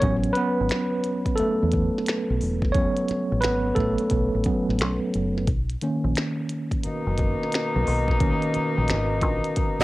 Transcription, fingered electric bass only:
0.03 0.30 A1 loud
0.61 0.69 G#1 medium
1.40 muted fingered electric bass stroke soft
1.63 1.89 E2 medium
2.30 2.39 B1 medium
2.42 2.86 E1 medium
3.10 muted fingered electric bass stroke soft
3.32 3.46 A1 medium
3.44 3.71 G#1 medium
3.77 3.94 A1 medium
4.12 4.29 B1 medium
4.35 4.44 A1 medium
4.69 4.81 A1 medium
4.81 4.98 B1 medium
5.15 5.48 F#1 medium
5.48 5.75 B1 medium
6.04 6.14 A#1 medium
6.86 muted fingered electric bass stroke soft
7.07 7.33 F#1 medium
7.76 7.85 B1 medium
7.87 8.31 B1 medium
8.56 muted fingered electric bass stroke soft
8.78 8.92 A#1 medium
8.90 9.22 G#1 medium
9.22 9.40 A#1 medium
9.80 muted fingered electric bass stroke soft

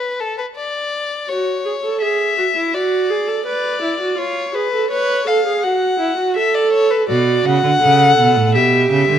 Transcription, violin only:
0.00 0.22 B4 medium
0.20 0.38 A4 medium
0.38 0.46 B4 medium
0.56 1.30 D5 medium
1.29 2.00 C#5 medium
2.01 2.75 E5 medium
2.74 3.46 D5 medium
3.46 4.20 D5 medium
4.18 4.56 C#5 medium
4.55 4.90 B4 medium
4.91 5.29 C#5 medium
5.27 5.65 F5 medium
5.64 6.36 F#5 medium
6.37 6.56 E5 medium
6.55 6.72 D5 medium
6.73 6.92 C#5 medium
6.91 7.09 B4 medium
7.09 7.47 D5 medium
7.46 8.55 F#5 loud
8.55 8.90 E5 medium
8.92 9.19 E5 medium

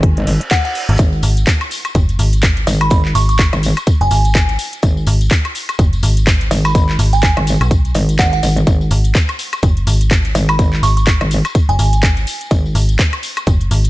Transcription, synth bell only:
0.51 0.60 F#5 medium
0.65 0.71 F#5 medium
2.81 2.99 B5 medium
3.15 3.24 C#6 loud
3.29 3.35 C#6 medium
4.01 4.67 G#5 medium
6.65 6.83 B5 medium
7.13 7.47 G#5 medium
8.19 8.28 F#5 medium
8.33 8.39 F#5 medium
10.49 10.67 B5 medium
10.83 10.92 C#6 medium
10.97 11.03 C#6 medium
11.69 12.35 G#5 medium

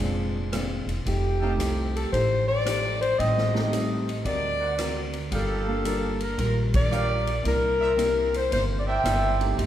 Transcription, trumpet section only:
1.40 1.53 A4 medium
1.40 1.53 D#5 medium
1.40 1.53 F5 medium
1.40 1.53 G5 medium
3.18 3.42 A4 medium
3.18 3.43 C5 medium
3.18 3.43 D#5 medium
3.18 3.43 G5 medium
4.60 4.72 A#4 medium
4.60 4.72 C5 medium
4.60 4.72 D5 medium
4.60 4.72 F#5 medium
5.32 6.13 G4 medium
5.32 6.13 D5 medium
5.32 6.13 F5 medium
6.91 7.15 G4 medium
6.91 7.16 A#4 medium
6.91 7.16 D5 medium
6.91 7.15 F5 medium
7.80 7.92 A#4 medium
7.80 7.92 C5 medium
7.80 7.92 D5 medium
7.80 7.92 E5 medium
8.87 9.54 A#4 medium
8.87 9.54 C5 medium
8.87 9.54 D5 medium
8.87 9.54 G5 loud

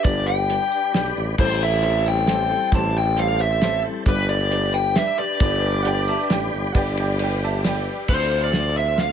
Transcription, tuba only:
0.04 0.58 G1 loud
0.94 1.14 B1 medium
1.16 1.36 A1 medium
1.38 2.54 A1 loud
2.72 3.88 A1 loud
4.06 4.98 G1 loud
5.40 6.17 G1 loud
6.31 6.50 A1 medium
6.53 6.73 G1 medium
6.75 7.90 G1 loud
8.09 9.12 D2 loud

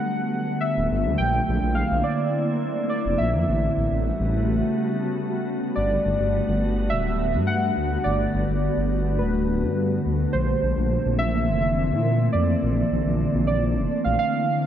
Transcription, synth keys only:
0.00 0.66 F#5 loud
0.61 1.20 E5 loud
1.18 1.78 G5 loud
1.75 2.05 F5 loud
2.03 2.86 D5 medium
2.89 3.20 D5 medium
3.18 5.43 E5 medium
5.75 6.94 D5 loud
6.90 7.49 E5 loud
7.47 8.06 F#5 loud
8.04 9.22 D5 loud
9.18 10.01 B4 medium
10.33 11.15 C5 medium
11.19 12.37 E5 loud
12.33 13.46 D5 loud
13.47 14.01 D5 medium
14.04 14.18 F5 medium
14.19 14.66 F5 loud

